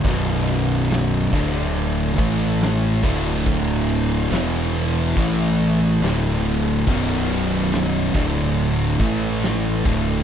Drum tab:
CC |---x----|--------|x--x----|
RD |xxx--xxx|xxxxxxxx|-xx--xxx|
SD |--o---o-|--o---o-|--o---o-|
BD |o--o-o-o|o---o---|o--o-o-o|